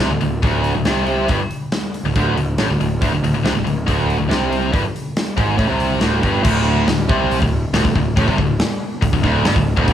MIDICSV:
0, 0, Header, 1, 5, 480
1, 0, Start_track
1, 0, Tempo, 429799
1, 1442, Time_signature, 4, 2, 24, 8
1, 11091, End_track
2, 0, Start_track
2, 0, Title_t, "Distorted electric guitar"
2, 0, Program_c, 0, 30
2, 0, Note_on_c, 0, 48, 101
2, 114, Note_off_c, 0, 48, 0
2, 11091, End_track
3, 0, Start_track
3, 0, Title_t, "Distorted electric guitar"
3, 0, Program_c, 1, 30
3, 117, Note_on_c, 1, 38, 70
3, 220, Note_off_c, 1, 38, 0
3, 233, Note_on_c, 1, 38, 72
3, 429, Note_off_c, 1, 38, 0
3, 473, Note_on_c, 1, 38, 94
3, 816, Note_off_c, 1, 38, 0
3, 829, Note_on_c, 1, 38, 67
3, 956, Note_off_c, 1, 38, 0
3, 956, Note_on_c, 1, 48, 94
3, 1432, Note_off_c, 1, 48, 0
3, 1444, Note_on_c, 1, 43, 98
3, 1556, Note_off_c, 1, 43, 0
3, 2297, Note_on_c, 1, 38, 66
3, 2396, Note_off_c, 1, 38, 0
3, 2410, Note_on_c, 1, 38, 101
3, 2639, Note_off_c, 1, 38, 0
3, 2656, Note_on_c, 1, 38, 62
3, 2841, Note_off_c, 1, 38, 0
3, 2892, Note_on_c, 1, 45, 100
3, 3000, Note_off_c, 1, 45, 0
3, 3017, Note_on_c, 1, 38, 69
3, 3117, Note_off_c, 1, 38, 0
3, 3130, Note_on_c, 1, 38, 69
3, 3319, Note_off_c, 1, 38, 0
3, 3375, Note_on_c, 1, 38, 100
3, 3482, Note_off_c, 1, 38, 0
3, 3508, Note_on_c, 1, 38, 66
3, 3605, Note_off_c, 1, 38, 0
3, 3618, Note_on_c, 1, 38, 71
3, 3723, Note_off_c, 1, 38, 0
3, 3736, Note_on_c, 1, 38, 73
3, 3841, Note_off_c, 1, 38, 0
3, 3846, Note_on_c, 1, 48, 108
3, 3957, Note_off_c, 1, 48, 0
3, 3963, Note_on_c, 1, 38, 67
3, 4059, Note_off_c, 1, 38, 0
3, 4073, Note_on_c, 1, 38, 65
3, 4270, Note_off_c, 1, 38, 0
3, 4316, Note_on_c, 1, 38, 102
3, 4660, Note_off_c, 1, 38, 0
3, 4673, Note_on_c, 1, 38, 71
3, 4784, Note_off_c, 1, 38, 0
3, 4789, Note_on_c, 1, 48, 102
3, 5269, Note_off_c, 1, 48, 0
3, 5274, Note_on_c, 1, 43, 105
3, 5392, Note_off_c, 1, 43, 0
3, 5996, Note_on_c, 1, 44, 92
3, 6221, Note_off_c, 1, 44, 0
3, 6226, Note_on_c, 1, 45, 95
3, 6340, Note_off_c, 1, 45, 0
3, 6344, Note_on_c, 1, 48, 97
3, 6707, Note_off_c, 1, 48, 0
3, 6716, Note_on_c, 1, 38, 100
3, 6948, Note_off_c, 1, 38, 0
3, 6952, Note_on_c, 1, 43, 89
3, 7177, Note_off_c, 1, 43, 0
3, 7181, Note_on_c, 1, 38, 107
3, 7665, Note_off_c, 1, 38, 0
3, 7678, Note_on_c, 1, 38, 76
3, 7872, Note_off_c, 1, 38, 0
3, 7916, Note_on_c, 1, 48, 103
3, 8272, Note_off_c, 1, 48, 0
3, 8287, Note_on_c, 1, 38, 73
3, 8477, Note_off_c, 1, 38, 0
3, 8646, Note_on_c, 1, 38, 109
3, 8750, Note_off_c, 1, 38, 0
3, 8763, Note_on_c, 1, 38, 74
3, 8877, Note_off_c, 1, 38, 0
3, 8890, Note_on_c, 1, 38, 73
3, 9077, Note_off_c, 1, 38, 0
3, 9118, Note_on_c, 1, 45, 111
3, 9232, Note_off_c, 1, 45, 0
3, 9253, Note_on_c, 1, 48, 98
3, 9360, Note_off_c, 1, 48, 0
3, 9365, Note_on_c, 1, 38, 76
3, 9555, Note_off_c, 1, 38, 0
3, 10069, Note_on_c, 1, 38, 75
3, 10185, Note_off_c, 1, 38, 0
3, 10198, Note_on_c, 1, 38, 78
3, 10296, Note_off_c, 1, 38, 0
3, 10310, Note_on_c, 1, 38, 93
3, 10547, Note_off_c, 1, 38, 0
3, 10552, Note_on_c, 1, 43, 111
3, 10668, Note_off_c, 1, 43, 0
3, 10676, Note_on_c, 1, 38, 75
3, 10869, Note_off_c, 1, 38, 0
3, 10905, Note_on_c, 1, 38, 99
3, 11012, Note_off_c, 1, 38, 0
3, 11025, Note_on_c, 1, 38, 111
3, 11091, Note_off_c, 1, 38, 0
3, 11091, End_track
4, 0, Start_track
4, 0, Title_t, "Picked electric bass"
4, 0, Program_c, 2, 34
4, 109, Note_on_c, 2, 26, 77
4, 226, Note_off_c, 2, 26, 0
4, 244, Note_on_c, 2, 26, 66
4, 466, Note_off_c, 2, 26, 0
4, 476, Note_on_c, 2, 26, 93
4, 813, Note_off_c, 2, 26, 0
4, 834, Note_on_c, 2, 26, 77
4, 949, Note_off_c, 2, 26, 0
4, 956, Note_on_c, 2, 36, 82
4, 1405, Note_off_c, 2, 36, 0
4, 1445, Note_on_c, 2, 31, 90
4, 1555, Note_off_c, 2, 31, 0
4, 2276, Note_on_c, 2, 26, 75
4, 2391, Note_off_c, 2, 26, 0
4, 2408, Note_on_c, 2, 26, 94
4, 2629, Note_off_c, 2, 26, 0
4, 2636, Note_on_c, 2, 26, 72
4, 2863, Note_off_c, 2, 26, 0
4, 2867, Note_on_c, 2, 33, 82
4, 2986, Note_off_c, 2, 33, 0
4, 3001, Note_on_c, 2, 26, 77
4, 3110, Note_off_c, 2, 26, 0
4, 3117, Note_on_c, 2, 26, 75
4, 3343, Note_off_c, 2, 26, 0
4, 3370, Note_on_c, 2, 26, 87
4, 3479, Note_off_c, 2, 26, 0
4, 3486, Note_on_c, 2, 26, 78
4, 3596, Note_off_c, 2, 26, 0
4, 3602, Note_on_c, 2, 26, 82
4, 3714, Note_off_c, 2, 26, 0
4, 3734, Note_on_c, 2, 26, 81
4, 3841, Note_off_c, 2, 26, 0
4, 3848, Note_on_c, 2, 36, 85
4, 3954, Note_off_c, 2, 36, 0
4, 3961, Note_on_c, 2, 26, 82
4, 4074, Note_off_c, 2, 26, 0
4, 4088, Note_on_c, 2, 26, 68
4, 4309, Note_off_c, 2, 26, 0
4, 4332, Note_on_c, 2, 26, 90
4, 4663, Note_off_c, 2, 26, 0
4, 4683, Note_on_c, 2, 26, 79
4, 4795, Note_off_c, 2, 26, 0
4, 4805, Note_on_c, 2, 36, 84
4, 5251, Note_off_c, 2, 36, 0
4, 5286, Note_on_c, 2, 31, 85
4, 5397, Note_off_c, 2, 31, 0
4, 6000, Note_on_c, 2, 32, 78
4, 6225, Note_off_c, 2, 32, 0
4, 6237, Note_on_c, 2, 33, 86
4, 6344, Note_off_c, 2, 33, 0
4, 6350, Note_on_c, 2, 36, 88
4, 6691, Note_off_c, 2, 36, 0
4, 6714, Note_on_c, 2, 26, 85
4, 6942, Note_off_c, 2, 26, 0
4, 6962, Note_on_c, 2, 31, 84
4, 7186, Note_off_c, 2, 31, 0
4, 7196, Note_on_c, 2, 26, 90
4, 7645, Note_off_c, 2, 26, 0
4, 7668, Note_on_c, 2, 26, 74
4, 7898, Note_off_c, 2, 26, 0
4, 7923, Note_on_c, 2, 36, 86
4, 8257, Note_off_c, 2, 36, 0
4, 8279, Note_on_c, 2, 26, 80
4, 8503, Note_off_c, 2, 26, 0
4, 8632, Note_on_c, 2, 26, 97
4, 8748, Note_off_c, 2, 26, 0
4, 8758, Note_on_c, 2, 26, 80
4, 8871, Note_off_c, 2, 26, 0
4, 8884, Note_on_c, 2, 26, 81
4, 9106, Note_off_c, 2, 26, 0
4, 9121, Note_on_c, 2, 33, 96
4, 9233, Note_off_c, 2, 33, 0
4, 9246, Note_on_c, 2, 36, 95
4, 9355, Note_off_c, 2, 36, 0
4, 9360, Note_on_c, 2, 26, 85
4, 9583, Note_off_c, 2, 26, 0
4, 10075, Note_on_c, 2, 26, 86
4, 10183, Note_off_c, 2, 26, 0
4, 10190, Note_on_c, 2, 26, 80
4, 10306, Note_off_c, 2, 26, 0
4, 10314, Note_on_c, 2, 26, 87
4, 10539, Note_off_c, 2, 26, 0
4, 10561, Note_on_c, 2, 31, 92
4, 10663, Note_off_c, 2, 31, 0
4, 10670, Note_on_c, 2, 26, 84
4, 10897, Note_off_c, 2, 26, 0
4, 10909, Note_on_c, 2, 26, 91
4, 11020, Note_off_c, 2, 26, 0
4, 11027, Note_on_c, 2, 26, 98
4, 11091, Note_off_c, 2, 26, 0
4, 11091, End_track
5, 0, Start_track
5, 0, Title_t, "Drums"
5, 233, Note_on_c, 9, 46, 50
5, 345, Note_off_c, 9, 46, 0
5, 480, Note_on_c, 9, 46, 67
5, 481, Note_on_c, 9, 36, 100
5, 592, Note_off_c, 9, 36, 0
5, 592, Note_off_c, 9, 46, 0
5, 716, Note_on_c, 9, 46, 53
5, 828, Note_off_c, 9, 46, 0
5, 952, Note_on_c, 9, 46, 64
5, 954, Note_on_c, 9, 38, 102
5, 1064, Note_off_c, 9, 46, 0
5, 1066, Note_off_c, 9, 38, 0
5, 1192, Note_on_c, 9, 46, 46
5, 1304, Note_off_c, 9, 46, 0
5, 1435, Note_on_c, 9, 46, 69
5, 1444, Note_on_c, 9, 36, 105
5, 1547, Note_off_c, 9, 46, 0
5, 1556, Note_off_c, 9, 36, 0
5, 1683, Note_on_c, 9, 46, 55
5, 1795, Note_off_c, 9, 46, 0
5, 1922, Note_on_c, 9, 46, 80
5, 1925, Note_on_c, 9, 38, 116
5, 2034, Note_off_c, 9, 46, 0
5, 2036, Note_off_c, 9, 38, 0
5, 2171, Note_on_c, 9, 46, 56
5, 2282, Note_off_c, 9, 46, 0
5, 2408, Note_on_c, 9, 46, 75
5, 2410, Note_on_c, 9, 36, 92
5, 2520, Note_off_c, 9, 46, 0
5, 2522, Note_off_c, 9, 36, 0
5, 2652, Note_on_c, 9, 46, 58
5, 2764, Note_off_c, 9, 46, 0
5, 2884, Note_on_c, 9, 46, 75
5, 2886, Note_on_c, 9, 38, 100
5, 2996, Note_off_c, 9, 46, 0
5, 2998, Note_off_c, 9, 38, 0
5, 3136, Note_on_c, 9, 46, 54
5, 3247, Note_off_c, 9, 46, 0
5, 3370, Note_on_c, 9, 46, 77
5, 3371, Note_on_c, 9, 36, 103
5, 3482, Note_off_c, 9, 36, 0
5, 3482, Note_off_c, 9, 46, 0
5, 3620, Note_on_c, 9, 46, 54
5, 3732, Note_off_c, 9, 46, 0
5, 3859, Note_on_c, 9, 46, 75
5, 3861, Note_on_c, 9, 38, 115
5, 3970, Note_off_c, 9, 46, 0
5, 3973, Note_off_c, 9, 38, 0
5, 4098, Note_on_c, 9, 46, 49
5, 4209, Note_off_c, 9, 46, 0
5, 4332, Note_on_c, 9, 36, 94
5, 4337, Note_on_c, 9, 46, 68
5, 4444, Note_off_c, 9, 36, 0
5, 4449, Note_off_c, 9, 46, 0
5, 4581, Note_on_c, 9, 46, 53
5, 4692, Note_off_c, 9, 46, 0
5, 4816, Note_on_c, 9, 46, 67
5, 4818, Note_on_c, 9, 38, 107
5, 4927, Note_off_c, 9, 46, 0
5, 4929, Note_off_c, 9, 38, 0
5, 5055, Note_on_c, 9, 46, 51
5, 5166, Note_off_c, 9, 46, 0
5, 5288, Note_on_c, 9, 36, 101
5, 5291, Note_on_c, 9, 46, 70
5, 5400, Note_off_c, 9, 36, 0
5, 5403, Note_off_c, 9, 46, 0
5, 5537, Note_on_c, 9, 46, 57
5, 5649, Note_off_c, 9, 46, 0
5, 5770, Note_on_c, 9, 46, 79
5, 5772, Note_on_c, 9, 38, 117
5, 5881, Note_off_c, 9, 46, 0
5, 5884, Note_off_c, 9, 38, 0
5, 6005, Note_on_c, 9, 36, 96
5, 6011, Note_on_c, 9, 46, 56
5, 6116, Note_off_c, 9, 36, 0
5, 6123, Note_off_c, 9, 46, 0
5, 6238, Note_on_c, 9, 46, 71
5, 6241, Note_on_c, 9, 36, 91
5, 6349, Note_off_c, 9, 46, 0
5, 6353, Note_off_c, 9, 36, 0
5, 6476, Note_on_c, 9, 46, 55
5, 6588, Note_off_c, 9, 46, 0
5, 6711, Note_on_c, 9, 46, 72
5, 6713, Note_on_c, 9, 38, 102
5, 6822, Note_off_c, 9, 46, 0
5, 6825, Note_off_c, 9, 38, 0
5, 6959, Note_on_c, 9, 46, 54
5, 6960, Note_on_c, 9, 36, 97
5, 7070, Note_off_c, 9, 46, 0
5, 7072, Note_off_c, 9, 36, 0
5, 7196, Note_on_c, 9, 49, 125
5, 7201, Note_on_c, 9, 36, 105
5, 7308, Note_off_c, 9, 49, 0
5, 7313, Note_off_c, 9, 36, 0
5, 7679, Note_on_c, 9, 46, 63
5, 7681, Note_on_c, 9, 38, 118
5, 7791, Note_off_c, 9, 46, 0
5, 7793, Note_off_c, 9, 38, 0
5, 7922, Note_on_c, 9, 36, 110
5, 8034, Note_off_c, 9, 36, 0
5, 8166, Note_on_c, 9, 46, 59
5, 8278, Note_off_c, 9, 46, 0
5, 8284, Note_on_c, 9, 36, 90
5, 8396, Note_off_c, 9, 36, 0
5, 8640, Note_on_c, 9, 46, 60
5, 8642, Note_on_c, 9, 38, 104
5, 8752, Note_off_c, 9, 46, 0
5, 8754, Note_off_c, 9, 38, 0
5, 8766, Note_on_c, 9, 36, 94
5, 8877, Note_off_c, 9, 36, 0
5, 8885, Note_on_c, 9, 36, 87
5, 8996, Note_off_c, 9, 36, 0
5, 9124, Note_on_c, 9, 46, 57
5, 9125, Note_on_c, 9, 36, 113
5, 9236, Note_off_c, 9, 36, 0
5, 9236, Note_off_c, 9, 46, 0
5, 9245, Note_on_c, 9, 36, 77
5, 9357, Note_off_c, 9, 36, 0
5, 9362, Note_on_c, 9, 36, 87
5, 9473, Note_off_c, 9, 36, 0
5, 9600, Note_on_c, 9, 46, 62
5, 9602, Note_on_c, 9, 38, 125
5, 9712, Note_off_c, 9, 46, 0
5, 9714, Note_off_c, 9, 38, 0
5, 10077, Note_on_c, 9, 46, 65
5, 10078, Note_on_c, 9, 36, 94
5, 10189, Note_off_c, 9, 46, 0
5, 10190, Note_off_c, 9, 36, 0
5, 10196, Note_on_c, 9, 36, 88
5, 10307, Note_off_c, 9, 36, 0
5, 10316, Note_on_c, 9, 36, 85
5, 10320, Note_on_c, 9, 38, 36
5, 10428, Note_off_c, 9, 36, 0
5, 10432, Note_off_c, 9, 38, 0
5, 10555, Note_on_c, 9, 46, 64
5, 10558, Note_on_c, 9, 38, 119
5, 10667, Note_off_c, 9, 46, 0
5, 10669, Note_off_c, 9, 38, 0
5, 10676, Note_on_c, 9, 36, 96
5, 10788, Note_off_c, 9, 36, 0
5, 10913, Note_on_c, 9, 36, 99
5, 11025, Note_off_c, 9, 36, 0
5, 11030, Note_on_c, 9, 46, 68
5, 11033, Note_on_c, 9, 36, 102
5, 11091, Note_off_c, 9, 36, 0
5, 11091, Note_off_c, 9, 46, 0
5, 11091, End_track
0, 0, End_of_file